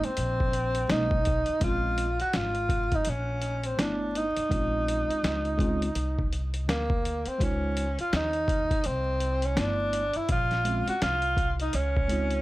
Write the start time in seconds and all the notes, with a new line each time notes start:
Already playing: D#4
0.04 C4, muted upright bass stroke, closed hi-hat
0.17 A#1, closed hi-hat
0.40 kick
0.53 closed hi-hat
0.75 closed hi-hat
0.88 B1 G#3 A#3 C#4 D#4, snare, closed hi-hat
1.11 kick
1.25 kick, closed hi-hat
1.46 muted upright bass stroke, closed hi-hat
1.60 A#1 G#3 C4 C#4 F4, kick, closed hi-hat
1.98 closed hi-hat
2.20 F#4, muted upright bass stroke, closed hi-hat
2.33 G#1 F4, snare, closed hi-hat
2.55 closed hi-hat
2.69 kick, closed hi-hat
2.92 D#4, kick, closed hi-hat
3.05 A#1, closed hi-hat
3.09 C#4
3.42 closed hi-hat
3.64 C4, closed hi-hat
3.77 G1 A3 B3 D4 E4, snare, closed hi-hat
4.15 D#4, closed hi-hat
4.37 muted upright bass stroke, closed hi-hat
4.49 A#1 G#3 C4 C#4, kick, closed hi-hat
4.53 F4
4.88 closed hi-hat
5.09 muted upright bass stroke, closed hi-hat
5.24 C#2, snare, closed hi-hat
5.45 closed hi-hat
5.58 G#3 C4 C#4 F4, kick, closed hi-hat
5.82 closed hi-hat
5.95 C2, closed hi-hat
6.19 kick
6.33 closed hi-hat
6.54 closed hi-hat
6.68 D2 A#3, snare, closed hi-hat
6.90 kick
7.05 closed hi-hat
7.26 C4, muted upright bass stroke, closed hi-hat
7.38 C#2 G#3 D#4 F4 C5, kick, closed hi-hat
7.43 C#4
7.77 closed hi-hat
7.99 F4, muted upright bass stroke, closed hi-hat
8.13 D#2 D#4, snare, closed hi-hat
8.33 closed hi-hat
8.48 kick, closed hi-hat
8.71 muted upright bass stroke, kick, closed hi-hat
8.84 C2 C4, closed hi-hat
9.20 closed hi-hat
9.42 C#4, closed hi-hat
9.55 G1 A3 B3 D4 E4, snare, closed hi-hat
9.60 D4
9.93 closed hi-hat
10.13 E4, muted upright bass stroke, closed hi-hat
10.29 A#1 F4, kick, closed hi-hat
10.51 snare, closed hi-hat
10.65 G#3 C4 C#4 F4, closed hi-hat
10.88 F#4, muted upright bass stroke, closed hi-hat
11.02 C2 F4, snare, closed hi-hat
11.22 closed hi-hat
11.37 kick, closed hi-hat
11.60 D#4, closed hi-hat
11.73 C#2 C#4, closed hi-hat
11.97 kick
12.08 G#3 C4 D#4 F4, closed hi-hat
12.30 closed hi-hat